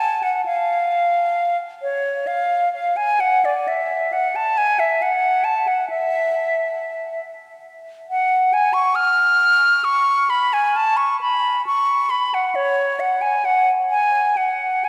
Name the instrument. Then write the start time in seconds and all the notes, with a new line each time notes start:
flute
0.00 A5
0.23 F#5
0.46 F5
1.82 C#5
2.27 F5
2.74 F5
2.97 G#5
3.20 F#5
3.45 D5
3.68 E5
4.12 F#5
4.36 A5
4.58 G#5
4.79 E5
5.02 F#5
5.44 A5
5.67 F#5
5.90 E5
8.11 F#5
8.53 G#5
8.73 C#6
8.95 F6
9.84 C#6
10.30 B5
10.53 G#5
10.76 A5
10.97 C#6
11.21 B5
11.67 C#6
12.10 B5
12.34 F#5
12.55 C#5
13.00 F#5
13.21 G#5
13.45 F#5
13.90 G#5
14.37 F#5
14.84 G#5